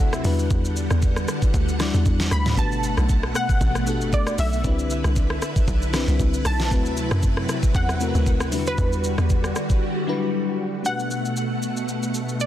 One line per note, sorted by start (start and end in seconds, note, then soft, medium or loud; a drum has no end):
0.00 0.23 D2 medium
0.00 0.23 C3 medium
0.00 0.23 F#3 medium
0.00 0.27 A3 medium
0.00 0.21 C4 medium
0.00 0.27 C4 medium
0.00 0.24 D4 medium
0.00 0.21 E4 medium
0.00 0.25 E4 medium
0.00 0.26 F#4 medium
0.00 0.13 A4 medium
0.00 0.26 B4 loud
0.00 0.27 D5 medium
0.00 0.13 F#5 medium
0.13 0.38 E5 medium
0.13 cross-stick loud
0.13 shaker medium
0.24 0.49 E2 loud
0.24 2.55 D3 medium
0.24 1.07 G3 loud
0.24 2.55 G3 medium
0.24 1.08 D4 medium
0.24 1.08 E4 medium
0.24 1.09 F#4 medium
0.24 1.09 B4 loud
0.24 4.60 F#5 medium
0.24 open hi-hat medium
0.24 shaker medium
0.39 shaker medium
0.51 0.88 E2 loud
0.51 kick loud
0.51 shaker medium
0.65 shaker medium
0.76 shaker medium
0.91 1.26 E2 loud
0.91 cross-stick medium
0.91 shaker medium
1.02 kick medium
1.02 shaker medium
1.16 cross-stick medium
1.16 shaker medium
1.28 cross-stick loud
1.28 shaker medium
1.42 kick loud
1.42 shaker medium
1.54 1.92 D2 loud
1.54 kick loud
1.54 shaker medium
1.68 shaker medium
1.79 2.43 G3 loud
1.79 2.43 D4 medium
1.79 2.43 E4 medium
1.79 2.44 F#4 medium
1.79 2.44 D5 loud
1.79 cross-stick loud
1.79 snare medium
1.79 shaker loud
1.94 2.05 E2 medium
1.94 shaker medium
2.06 2.30 E2 loud
2.06 kick loud
2.06 shaker medium
2.20 snare medium
2.20 shaker medium
2.31 2.56 D2 loud
2.31 2.56 B5 loud
2.31 cross-stick loud
2.31 shaker medium
2.46 snare medium
2.46 mid tom loud
2.46 shaker medium
2.57 2.95 G1 loud
2.57 4.62 B2 medium
2.57 3.40 A3 medium
2.57 4.62 A3 medium
2.57 3.41 D4 medium
2.57 3.41 F#4 medium
2.57 3.41 G4 medium
2.57 3.42 B4 medium
2.57 3.38 A5 loud
2.57 kick loud
2.57 shaker medium
2.72 shaker medium
2.83 shaker medium
2.97 3.33 B1 medium
2.97 cross-stick loud
2.97 shaker soft
3.09 kick medium
3.09 shaker medium
3.23 cross-stick medium
3.35 4.15 F#5 loud
3.35 cross-stick loud
3.35 shaker medium
3.49 kick loud
3.49 shaker medium
3.61 4.03 A1 loud
3.61 kick loud
3.61 shaker medium
3.75 cross-stick medium
3.75 shaker medium
3.86 4.49 A3 medium
3.86 4.50 D4 medium
3.86 4.50 F#4 medium
3.86 4.50 G4 medium
3.86 4.51 A4 medium
3.86 shaker loud
4.01 4.36 G1 medium
4.01 shaker soft
4.13 4.40 D5 medium
4.13 kick loud
4.13 shaker medium
4.27 cross-stick loud
4.27 shaker medium
4.38 4.63 B1 loud
4.38 5.38 E5 medium
4.38 open hi-hat medium
4.38 shaker medium
4.53 shaker medium
4.64 5.02 C2 loud
4.64 6.69 D3 medium
4.64 5.47 C4 medium
4.64 5.48 D4 medium
4.64 8.48 E4 medium
4.64 5.48 E4 medium
4.64 5.48 G4 medium
4.64 8.49 B4 medium
4.64 5.49 B4 medium
4.64 kick loud
4.64 shaker medium
4.79 shaker medium
4.90 shaker medium
5.04 5.40 C2 medium
5.04 cross-stick loud
5.04 shaker medium
5.16 kick medium
5.16 shaker medium
5.30 cross-stick medium
5.42 cross-stick loud
5.42 shaker medium
5.56 kick loud
5.56 shaker medium
5.68 6.06 B1 loud
5.68 kick loud
5.68 shaker medium
5.82 shaker medium
5.93 6.56 C4 loud
5.93 6.57 D4 medium
5.93 6.57 E4 medium
5.93 6.57 G4 medium
5.93 6.58 B4 loud
5.93 cross-stick medium
5.93 snare medium
5.93 shaker loud
6.08 6.19 C2 loud
6.08 shaker soft
6.20 6.44 C2 loud
6.20 kick loud
6.20 shaker medium
6.34 shaker medium
6.45 6.73 B1 loud
6.45 7.79 A5 loud
6.45 cross-stick loud
6.45 open hi-hat medium
6.45 shaker medium
6.60 snare medium
6.60 shaker medium
6.70 7.09 D2 loud
6.70 8.51 C3 medium
6.70 8.51 F#3 medium
6.70 7.54 A3 medium
6.70 7.54 C4 medium
6.70 7.55 E4 medium
6.70 7.55 F#4 medium
6.70 7.56 B4 medium
6.70 kick loud
6.70 shaker medium
6.86 shaker soft
6.97 shaker medium
7.11 7.47 F#2 medium
7.11 cross-stick loud
7.11 shaker soft
7.23 kick medium
7.23 shaker medium
7.37 cross-stick medium
7.49 cross-stick loud
7.49 shaker medium
7.63 kick loud
7.63 shaker medium
7.75 8.13 E2 medium
7.75 8.37 F#5 medium
7.75 kick loud
7.75 shaker medium
7.89 cross-stick medium
7.89 shaker medium
8.00 8.52 A3 medium
8.00 8.52 C4 medium
8.00 8.51 E4 medium
8.00 8.52 F#4 medium
8.00 8.08 A#4 medium
8.00 shaker loud
8.09 8.53 B4 medium
8.15 8.54 D2 medium
8.15 shaker soft
8.26 kick loud
8.26 shaker medium
8.40 cross-stick loud
8.40 shaker medium
8.51 8.77 E2 medium
8.51 10.83 D3 medium
8.51 9.35 G3 medium
8.51 10.83 G3 medium
8.51 9.35 D4 medium
8.51 9.36 E4 medium
8.51 10.83 F#4 medium
8.51 9.36 F#4 medium
8.51 9.36 B4 medium
8.51 open hi-hat medium
8.51 shaker medium
8.67 10.30 B4 loud
8.67 shaker medium
8.78 9.16 E2 loud
8.78 kick loud
8.78 shaker medium
8.93 shaker medium
9.04 shaker medium
9.18 9.54 E2 loud
9.18 cross-stick medium
9.18 shaker soft
9.30 kick medium
9.30 shaker medium
9.44 cross-stick medium
9.44 shaker medium
9.56 cross-stick loud
9.56 shaker medium
9.70 kick loud
9.70 shaker medium
10.07 10.14 F#3 medium
10.07 10.70 D4 medium
10.07 10.71 E4 medium
10.07 10.71 F#4 medium
10.07 10.71 B4 loud
10.13 10.73 G3 loud
10.83 12.46 B2 medium
10.83 12.46 A3 medium
10.83 12.46 D4 medium
10.83 12.46 F#4 medium
10.83 12.46 F#5 medium
10.83 12.45 F#5 loud
10.83 shaker medium
10.87 12.46 G4 medium
10.87 12.46 B4 medium
10.99 shaker soft
11.11 shaker medium
11.25 shaker soft
11.37 shaker medium
11.63 shaker medium
11.77 shaker medium
11.89 shaker medium
12.03 shaker soft
12.14 shaker medium
12.29 shaker soft
12.40 12.46 D5 medium
12.40 shaker medium